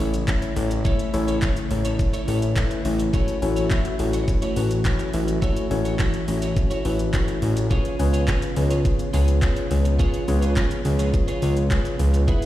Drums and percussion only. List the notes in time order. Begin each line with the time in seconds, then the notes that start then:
0.14 closed hi-hat, shaker
0.28 kick, clap, shaker
0.42 closed hi-hat, shaker
0.56 open hi-hat, shaker
0.71 closed hi-hat, shaker
0.85 kick, shaker
0.99 closed hi-hat, shaker
1.14 open hi-hat, shaker
1.28 closed hi-hat, shaker
1.42 kick, clap, shaker
1.56 closed hi-hat, shaker
1.71 open hi-hat, shaker
1.85 closed hi-hat, shaker
1.99 kick, shaker
2.14 closed hi-hat, shaker
2.28 open hi-hat, shaker
2.42 closed hi-hat, shaker
2.56 kick, clap, shaker
2.71 closed hi-hat, shaker
2.85 open hi-hat, shaker
3.00 closed hi-hat, shaker
3.14 kick, shaker
3.28 closed hi-hat, shaker
3.42 open hi-hat, shaker
3.57 closed hi-hat, shaker
3.71 kick, clap, shaker
3.85 closed hi-hat, shaker
3.99 open hi-hat, shaker
4.13 closed hi-hat, shaker
4.28 kick, shaker
4.42 closed hi-hat, shaker
4.56 open hi-hat, shaker
4.71 closed hi-hat, shaker
4.85 kick, clap, shaker
4.99 closed hi-hat, shaker
5.14 open hi-hat, shaker
5.28 closed hi-hat, shaker
5.42 kick, shaker
5.57 closed hi-hat, shaker
5.71 open hi-hat, shaker
5.85 closed hi-hat, shaker
5.99 kick, clap, shaker
6.14 closed hi-hat, shaker
6.28 open hi-hat, shaker
6.42 closed hi-hat, shaker
6.57 kick, shaker
6.71 closed hi-hat, shaker
6.85 open hi-hat, shaker
6.99 closed hi-hat, shaker
7.14 kick, clap, shaker
7.28 closed hi-hat, shaker
7.42 open hi-hat, shaker
7.57 closed hi-hat, shaker
7.71 kick, shaker
7.85 closed hi-hat, shaker
7.99 open hi-hat, shaker
8.14 closed hi-hat, shaker
8.28 kick, clap, shaker
8.42 closed hi-hat, shaker
8.56 open hi-hat, shaker
8.71 closed hi-hat, shaker
8.85 kick, shaker
8.99 closed hi-hat, shaker
9.14 open hi-hat, shaker
9.28 closed hi-hat, shaker
9.42 kick, clap, shaker
9.57 closed hi-hat, shaker
9.71 open hi-hat, shaker
9.85 closed hi-hat, shaker
9.99 kick, shaker
10.14 closed hi-hat, shaker
10.28 open hi-hat, shaker
10.42 closed hi-hat, shaker
10.56 kick, clap, shaker
10.71 closed hi-hat, shaker
10.85 open hi-hat, shaker
10.99 closed hi-hat, shaker
11.14 kick, shaker
11.28 closed hi-hat, shaker
11.42 open hi-hat, shaker
11.57 closed hi-hat, shaker
11.71 kick, clap, shaker
11.85 closed hi-hat, shaker
11.99 open hi-hat, shaker
12.14 closed hi-hat, shaker
12.28 kick, shaker
12.42 closed hi-hat, shaker